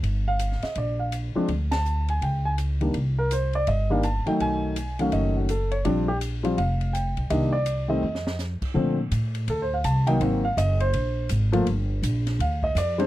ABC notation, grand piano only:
X:1
M:4/4
L:1/8
Q:"Swing" 1/4=165
K:Bb
V:1 name="Grand piano"
z f2 e d f z2 | z a2 _a g a z2 | z B c d e f a g | _a3 f ^d ^F =A ^c |
d G z2 f2 g2 | e d2 e3 z2 | z4 (3A c f a g | _g f e c3 z2 |
z4 f e d c |]
V:2 name="Grand piano"
z6 z [F,_A,CD] | z6 z [E,G,B,D] | z4 z [E,G,B,D] z [E,_G,A,E]- | [E,_G,A,E]2 z [^D,^F,A,^C]3 z2 |
[F,G,CD] z2 [F,G,CF] z4 | [E,G,B,D] z2 [E,G,A,C] z4 | [D,F,A,C] z6 [E,_G,B,E] | [E,_G,B,C] z6 [F,A,B,F] |
z6 z [G,_A,CD] |]